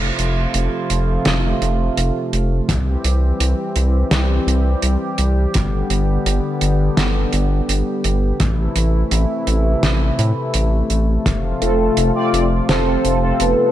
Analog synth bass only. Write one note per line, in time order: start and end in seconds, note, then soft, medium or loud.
0.00 0.11 F1 medium
0.19 0.47 F1 medium
0.55 0.69 F1 loud
0.90 1.18 F1 medium
1.26 1.54 F1 medium
1.62 1.90 F1 loud
1.97 2.11 F1 medium
2.33 2.61 F1 medium
2.69 2.97 C2 loud
3.05 3.32 C2 medium
3.40 3.54 C2 loud
3.76 4.04 C2 medium
4.12 4.40 C2 medium
4.47 4.75 C2 loud
4.83 4.97 C2 medium
5.19 5.47 C2 medium
5.55 5.83 G1 medium
5.90 6.18 G1 medium
6.26 6.40 G1 loud
6.62 6.90 G1 medium
6.97 7.25 G1 medium
7.33 7.61 G1 loud
7.69 7.83 G1 medium
8.05 8.32 G1 medium
8.40 8.68 A1 loud
8.76 9.04 A1 medium
9.12 9.26 A1 loud
9.47 9.75 A1 medium
9.83 10.11 A1 medium
10.19 10.33 A2 loud
10.55 10.82 A1 loud
10.90 11.18 A1 medium
11.26 11.54 F1 loud
11.62 11.90 F1 medium
11.97 12.11 F1 loud
12.33 12.61 F1 medium
12.69 12.97 F1 medium
13.05 13.33 F1 loud
13.40 13.54 F1 medium